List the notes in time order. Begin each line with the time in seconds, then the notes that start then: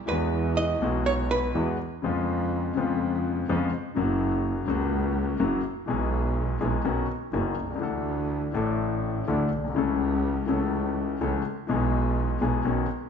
0.07 E2 E3 G#3 B3 F#4 B4
0.57 D#5
0.80 B1 B2 E3 G#3 B3 F#4
1.06 C#5
1.31 B4
1.54 E2 E3 G#3 B3 F#4
2.02 F2 C#3 F3 G#3 B3 F4
2.75 F2 C#3 F3 G#3 B3
2.79 F4
3.48 F2 C#3 F3 G#3 B3 F4
3.95 F#1 F#2 C#3 F#3 A#3 F#4
4.67 C#2 C#3 F#3 A#3 F#4
5.39 F#1 F#2 C#3 F#3 A#3 F#4
5.86 B1 B2 E3 G#3 B3
5.90 G#4
6.60 B1 B2 E3 G#3 B3 G#4
6.84 B1 B2 D#3 B3 C#4 F#4
7.33 F#1 F#2 D#3 B3 C#4 F#4
7.57 C2
7.64 B1
7.70 C2
7.76 C#2 E3
7.81 D2 D3 A3 D4 A4
8.52 A1 A2 E3 A3 D4
8.56 A4
9.27 D2 D3 E3 A3 D4 A4
9.52 B1
9.59 A#1
9.64 B1
9.70 C2
9.74 C#2 C#3 E3 A3 C#4 A4
10.46 C#2 C#3 E3 A3 C#4 A4
11.21 C#2 C#3 E3 A3 C#4 A4
11.67 B1 B2 E3 G#3 B3 G#4
12.41 B1 B2 E3 G#3 B3 G#4
12.64 B1 B2 D#3 B3 C#4 F#4